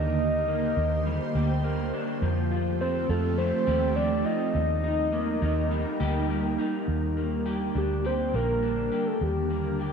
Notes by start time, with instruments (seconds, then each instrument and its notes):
Already playing: fingered electric bass D#2, ambient pad D3 A#3 G4 C5, clean electric guitar G3 A#3 D4 G4, soft synth lead D#5
0.48 clean electric guitar A#3
0.77 fingered electric bass D#2
1.06 clean electric guitar G3
1.35 fingered electric bass D2, clean electric guitar G4
1.64 clean electric guitar A#3
1.93 clean electric guitar D4
2.22 fingered electric bass F2, clean electric guitar F3, ambient pad F3 A3 C4 G4 A4
2.51 clean electric guitar F4
2.81 clean electric guitar C4, soft synth lead C5
3.09 fingered electric bass F2, clean electric guitar F4, soft synth lead A4
3.38 clean electric guitar A3, soft synth lead C5
3.67 fingered electric bass D#2, clean electric guitar G4
3.96 clean electric guitar C4, soft synth lead D5
4.25 clean electric guitar F4, soft synth lead D#5
4.54 fingered electric bass D#2, ambient pad G3 A#3 D#4 G4 A#4, soft synth lead D#5
4.84 clean electric guitar D#4
5.12 clean electric guitar A#3
5.42 fingered electric bass D#2, clean electric guitar D#4
5.71 clean electric guitar G3
6.00 fingered electric bass D2, clean electric guitar G4
6.29 clean electric guitar A#3
6.58 clean electric guitar D#4
6.88 fingered electric bass D#2, ambient pad D3 G3 A#3 D4 G4
7.17 clean electric guitar A#3
7.46 clean electric guitar G4
7.75 fingered electric bass D2, clean electric guitar D4, soft synth lead G4
8.05 clean electric guitar G4, soft synth lead C5
8.34 fingered electric bass A#1, clean electric guitar A#3, soft synth lead A#4
8.63 clean electric guitar D4
8.92 clean electric guitar G4
9.07 soft synth lead A4
9.21 fingered electric bass D#2, soft synth lead G4
9.50 clean electric guitar A#3
9.79 clean electric guitar G4